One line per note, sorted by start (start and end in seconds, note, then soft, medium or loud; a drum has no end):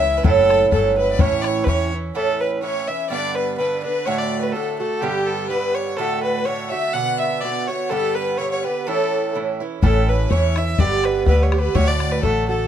0.00 0.19 C#2 medium
0.00 0.25 E3 soft
0.00 0.24 C#4 soft
0.00 0.24 E4 medium
0.00 0.19 E5 medium
0.00 0.25 E5 loud
0.17 0.26 B4 medium
0.24 0.66 F#1 loud
0.24 0.70 A2 medium
0.24 0.71 F#3 medium
0.24 0.72 C#4 medium
0.24 0.73 E4 loud
0.24 0.71 A4 loud
0.24 0.69 A4 loud
0.24 bodhran medium
0.38 bodhran soft
0.50 bodhran medium
0.71 1.14 G1 medium
0.71 1.18 A2 medium
0.71 1.19 F#3 medium
0.71 1.19 C#4 medium
0.71 1.19 E4 medium
0.71 0.95 A4 medium
0.71 0.96 A4 medium
0.71 bodhran medium
0.98 1.11 B4 medium
0.98 1.22 B4 medium
1.12 1.21 D5 medium
1.19 1.62 A1 medium
1.19 1.66 A2 loud
1.19 1.66 E3 medium
1.19 1.67 C#4 medium
1.19 1.67 E4 medium
1.19 1.66 C#5 loud
1.19 1.43 C#5 medium
1.19 bodhran medium
1.31 bodhran soft
1.41 1.48 D5 medium
1.41 bodhran medium
1.47 1.66 C#5 medium
1.64 2.10 E2 medium
1.64 1.92 A2 medium
1.64 1.92 E3 medium
1.64 1.92 C#4 medium
1.64 1.70 B4 medium
1.64 1.91 C#5 medium
1.64 bodhran medium
1.68 1.91 E4 medium
1.68 1.93 C#5 loud
1.92 2.14 E3 soft
1.92 2.14 C#4 soft
1.92 2.15 E4 medium
2.15 2.61 A2 medium
2.15 2.62 E3 medium
2.15 2.62 C#4 medium
2.15 2.63 E4 medium
2.15 2.39 A4 medium
2.15 2.42 A4 loud
2.40 2.62 B4 medium
2.40 2.51 B4 medium
2.62 2.88 A2 medium
2.62 2.88 E3 soft
2.62 2.87 C#4 medium
2.62 2.86 E4 medium
2.62 2.90 C#5 medium
2.62 2.89 C#5 loud
2.87 3.10 E3 soft
2.87 3.11 C#4 soft
2.87 3.10 E4 soft
2.87 3.09 E5 medium
2.87 3.10 E5 medium
3.10 3.57 G2 medium
3.10 3.58 D3 medium
3.10 3.58 B3 medium
3.10 3.60 D4 medium
3.10 3.36 D5 loud
3.10 3.34 D5 medium
3.35 3.57 B4 medium
3.58 3.84 G2 medium
3.58 3.84 D3 soft
3.58 3.84 B3 medium
3.58 3.82 D4 medium
3.58 3.82 B4 medium
3.83 4.06 D3 soft
3.83 4.07 B3 soft
3.83 4.06 D4 soft
3.83 4.07 B4 medium
3.83 4.09 B4 medium
4.06 4.53 A2 medium
4.06 4.55 D3 medium
4.06 4.55 A3 medium
4.06 4.55 F#4 loud
4.06 4.19 C#5 loud
4.06 4.19 C#5 medium
4.18 4.41 D5 medium
4.18 4.45 D5 medium
4.41 4.54 B4 medium
4.52 4.80 A2 soft
4.52 4.80 D3 medium
4.52 4.80 A3 medium
4.52 4.78 A4 medium
4.57 4.79 F#4 medium
4.79 5.01 D3 soft
4.79 5.02 A3 soft
4.79 5.02 F#4 soft
4.79 5.02 A4 medium
4.79 5.03 A4 medium
5.01 5.49 G2 medium
5.01 5.50 D3 medium
5.01 5.50 B3 medium
5.01 5.28 G4 medium
5.01 5.52 G4 medium
5.01 5.50 G4 medium
5.26 5.48 A4 medium
5.49 5.98 G2 medium
5.49 5.98 D3 medium
5.49 5.99 B3 medium
5.49 5.99 G4 medium
5.49 5.76 B4 loud
5.49 5.76 B4 medium
5.75 5.98 C#5 medium
5.75 5.97 C#5 medium
5.97 6.45 A2 medium
5.97 6.46 D3 medium
5.97 6.46 A3 medium
5.97 6.46 F#4 medium
5.97 6.22 A4 loud
5.97 6.22 A4 medium
6.23 6.47 B4 medium
6.45 6.72 A2 medium
6.45 6.72 D3 medium
6.45 6.71 A3 medium
6.45 6.70 F#4 medium
6.45 6.70 C#5 loud
6.45 6.72 C#5 medium
6.70 6.94 D3 soft
6.70 6.95 A3 soft
6.70 6.94 F#4 soft
6.70 6.95 E5 medium
6.93 7.41 B2 medium
6.93 7.42 D3 medium
6.93 7.43 B3 medium
6.93 7.43 F#4 medium
6.93 7.20 F#5 medium
6.93 7.18 F#5 loud
7.18 7.43 E5 medium
7.18 7.42 E5 medium
7.41 7.68 B2 medium
7.41 7.69 D3 medium
7.41 7.68 B3 medium
7.41 7.67 F#4 medium
7.41 7.69 D5 loud
7.41 7.67 D5 medium
7.67 7.90 D3 soft
7.67 7.91 B3 soft
7.67 7.91 F#4 soft
7.67 7.91 C#5 medium
7.89 8.37 G2 medium
7.89 8.38 D3 medium
7.89 8.39 B3 medium
7.89 8.39 G4 medium
7.89 8.18 A4 medium
7.89 8.16 A4 loud
8.14 8.39 B4 medium
8.14 8.38 B4 medium
8.38 8.64 G2 medium
8.38 8.65 D3 soft
8.38 8.64 B3 medium
8.38 8.63 G4 soft
8.38 8.51 C#5 loud
8.38 8.50 C#5 medium
8.50 8.66 C#5 medium
8.50 8.63 C#5 medium
8.64 8.87 D3 soft
8.64 8.87 B3 soft
8.64 8.86 G4 soft
8.64 8.86 B4 medium
8.64 8.88 B4 medium
8.86 9.33 A2 medium
8.86 9.34 E3 medium
8.86 9.35 C#4 medium
8.86 9.35 E4 medium
8.86 9.35 A4 loud
8.86 9.31 A4 medium
9.35 9.60 A2 medium
9.35 9.61 E3 medium
9.35 9.60 C#4 soft
9.35 9.59 E4 medium
9.60 9.82 E3 soft
9.60 9.82 C#4 medium
9.60 9.83 E4 medium
9.82 10.26 A1 medium
9.82 10.29 A2 medium
9.82 10.30 E3 medium
9.82 10.31 C#4 medium
9.82 10.31 E4 medium
9.82 10.10 A4 loud
9.82 10.06 A4 medium
9.82 bodhran medium
10.08 10.31 B4 medium
10.08 10.33 B4 medium
10.30 10.74 E2 medium
10.30 10.56 A2 medium
10.30 10.57 E3 medium
10.30 10.56 C#4 medium
10.30 10.55 E4 medium
10.30 10.59 C#5 medium
10.30 bodhran medium
10.56 10.79 E3 soft
10.56 10.79 C#4 soft
10.56 10.79 E4 soft
10.56 10.80 E5 medium
10.56 10.81 E5 medium
10.56 bodhran medium
10.78 11.22 G1 medium
10.78 11.26 G2 medium
10.78 11.27 D3 medium
10.78 11.27 B3 medium
10.78 11.28 G4 medium
10.78 11.06 D5 medium
10.78 11.06 D5 loud
10.78 bodhran medium
11.04 11.26 B4 medium
11.04 11.27 B4 medium
11.04 bodhran soft
11.26 11.70 D2 loud
11.26 11.53 G2 medium
11.26 11.53 D3 medium
11.26 11.52 B3 medium
11.26 11.51 G4 medium
11.26 11.42 B4 medium
11.26 11.44 B4 medium
11.26 bodhran medium
11.43 11.60 C#5 medium
11.52 11.74 D3 soft
11.52 11.75 B3 soft
11.52 11.75 G4 medium
11.52 bodhran medium
11.59 11.77 B4 medium
11.75 12.18 D2 loud
11.75 12.22 A2 medium
11.75 12.24 D3 medium
11.75 12.23 A3 medium
11.75 12.24 F#4 medium
11.75 11.89 C#5 medium
11.75 11.89 C#5 loud
11.75 bodhran medium
11.87 12.13 D5 loud
11.87 12.24 D5 medium
12.00 bodhran medium
12.12 12.22 B4 medium
12.23 12.66 A1 medium
12.23 12.49 A2 medium
12.23 12.49 D3 medium
12.23 12.49 A3 medium
12.23 12.48 F#4 medium
12.23 12.47 A4 medium
12.23 12.48 A4 medium
12.23 bodhran medium
12.48 12.68 D3 soft
12.48 12.68 A3 soft
12.48 12.68 F#4 soft
12.48 12.68 A4 medium